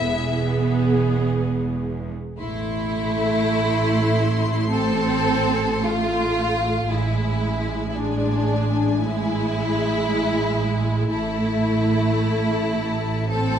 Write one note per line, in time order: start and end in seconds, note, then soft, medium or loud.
0.00 2.13 E1 medium
0.00 2.13 E2 medium
0.00 2.17 B3 medium
0.00 1.18 E4 medium
0.00 2.18 G#4 medium
0.00 1.18 E5 loud
2.38 6.86 A1 medium
2.38 6.86 A2 medium
2.38 4.68 A3 medium
2.38 4.68 E4 loud
2.38 6.86 C6 medium
4.72 5.82 C4 loud
4.72 5.83 A4 loud
5.83 6.90 A3 medium
5.83 6.90 F4 loud
6.90 11.07 A1 medium
6.90 11.06 A2 medium
6.90 7.94 G#3 medium
6.90 7.88 E4 medium
6.90 11.06 G#5 medium
7.89 7.95 E4 medium
7.96 8.99 G#3 medium
7.96 9.01 D4 medium
9.01 11.06 G#3 medium
9.01 11.08 E4 medium
11.10 13.59 A1 medium
11.10 13.59 A2 medium
11.10 13.30 A3 medium
11.10 13.26 E4 medium
11.10 13.59 A5 medium
13.30 13.59 C4 medium
13.30 13.59 A4 medium